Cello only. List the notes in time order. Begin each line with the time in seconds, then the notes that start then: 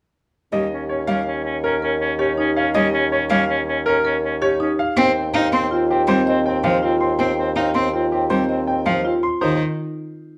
0.53 G3
1.08 G3
2.75 G3
3.30 G3
4.97 C4
5.34 D#4
5.52 C4
6.07 G3
6.64 F3
7.19 C4
7.56 D#4
7.75 C4
8.30 G3
8.86 F3
9.42 D#3